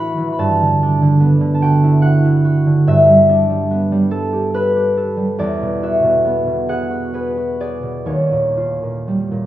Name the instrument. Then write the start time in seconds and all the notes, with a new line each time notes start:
harp
Already playing: A2 E3 A3 D4 E4 F#4 E5 F#5 A5 B5
0.17 E3
0.32 B5
0.39 G2 A5
0.61 D3
0.82 D4
1.02 D3
1.20 B3
1.41 D3
1.54 A5
1.62 F#4 G5
1.83 E4
2.02 F#4 F#5
2.24 E4
2.44 F#4
2.66 D3
2.87 G2 E5
3.09 G3
3.29 D4
3.50 G3
3.71 B3
3.92 G3
4.11 A4
4.33 G4
4.54 A4 B4
4.76 G4
4.97 A4
5.17 G3
5.38 E2 D5
5.62 B2
5.83 F#4 E5
6.03 B2
6.25 B3
6.47 B2
6.69 G#4 F#5
6.91 F#4
7.14 G#4 B4
7.37 F#4
7.60 G#4 D5
7.83 B2
8.06 D#2 C#5
8.32 A#2
8.57 F4
8.83 A#2
9.08 G3
9.31 A#2